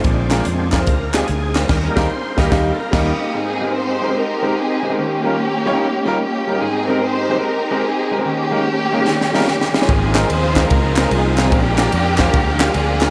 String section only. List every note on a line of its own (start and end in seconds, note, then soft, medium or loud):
2.94 3.32 A#3 medium
2.94 3.32 D#4 medium
2.94 3.31 G4 medium
3.35 4.13 C4 medium
3.35 3.76 D#4 medium
3.35 3.75 G#4 loud
3.76 4.15 D#4 medium
3.76 4.16 G4 medium
3.76 4.17 C5 loud
4.16 4.56 D#4 medium
4.16 4.94 G4 medium
4.16 4.57 A#4 medium
4.56 4.95 C4 medium
4.56 4.95 D#4 medium
4.56 4.98 G#4 loud
4.99 6.17 A#3 medium
4.99 6.17 C#4 medium
4.99 6.17 G4 loud
6.19 6.59 A#3 medium
6.19 6.59 C#4 medium
6.19 6.58 G4 loud
6.61 7.40 C4 medium
6.61 7.02 D#4 medium
6.61 6.88 G#4 loud
6.88 7.02 A#4 medium
7.01 7.43 D#4 medium
7.01 7.43 G4 medium
7.01 7.43 C5 loud
7.43 7.84 D#4 medium
7.43 8.22 G4 medium
7.43 7.84 A#4 loud
7.84 8.23 C4 medium
7.84 8.23 D#4 medium
7.84 8.25 G#4 loud
8.24 9.44 A#3 medium
8.24 9.44 C#4 medium
8.24 9.43 G4 loud
9.47 9.73 G4 medium
9.74 10.53 C4 medium
9.74 10.28 F4 medium
9.74 10.25 G#4 medium
10.28 10.70 D#4 medium
10.28 10.69 F4 medium
10.28 10.70 C5 loud
10.69 11.48 D#4 medium
10.69 11.11 F4 medium
10.69 11.08 A#4 medium
11.10 11.50 C4 medium
11.10 11.50 F4 medium
11.10 11.52 G#4 loud
11.50 12.71 D4 medium
11.50 12.73 G4 loud
12.74 13.10 D4 medium
12.74 13.10 F4 medium
12.74 13.10 G#4 loud